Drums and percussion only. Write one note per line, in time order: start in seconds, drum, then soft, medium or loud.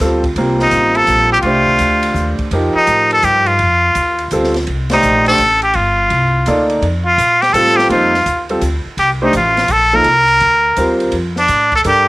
0.00 snare soft
0.00 hi-hat pedal medium
0.00 ride medium
0.24 kick medium
0.24 ride soft
0.36 ride medium
0.59 snare soft
0.71 hi-hat pedal medium
0.71 ride medium
0.95 ride soft
1.07 hi-hat pedal medium
1.07 ride medium
1.42 ride medium
1.67 kick soft
1.78 hi-hat pedal soft
1.78 ride medium
2.03 ride medium
2.15 hi-hat pedal medium
2.39 kick medium
2.39 ride soft
2.51 ride medium
2.87 hi-hat pedal medium
2.87 ride medium
3.11 ride soft
3.22 hi-hat pedal medium
3.22 ride medium
3.46 ride soft
3.59 ride medium
3.95 hi-hat pedal medium
3.95 ride medium
4.18 ride soft
4.31 hi-hat pedal medium
4.31 ride medium
4.44 snare soft
4.54 snare soft
4.54 ride soft
4.67 ride medium
4.90 snare medium
4.90 ride medium
5.02 hi-hat pedal medium
5.26 ride soft
5.38 hi-hat pedal soft
5.38 ride medium
5.62 ride soft
5.74 ride medium
6.10 ride medium
6.46 hi-hat pedal medium
6.46 ride medium
6.70 ride soft
6.82 ride medium
7.18 hi-hat pedal medium
7.18 ride medium
7.42 snare soft
7.42 ride soft
7.54 hi-hat pedal medium
7.54 ride medium
7.66 snare soft
7.79 snare soft
7.90 ride medium
8.14 snare soft
8.26 hi-hat pedal soft
8.26 ride medium
8.49 ride soft
8.61 hi-hat pedal medium
8.61 ride medium
8.98 ride medium
9.33 hi-hat pedal medium
9.33 ride medium
9.57 snare soft
9.57 ride soft
9.68 hi-hat pedal medium
9.68 ride medium
10.04 ride medium
10.28 ride soft
10.40 ride medium
10.76 hi-hat pedal medium
10.76 ride medium
11.00 ride soft
11.12 ride medium
11.36 snare soft
11.48 hi-hat pedal medium
11.48 ride medium
11.72 kick medium
11.72 ride soft
11.84 hi-hat pedal soft
11.84 ride medium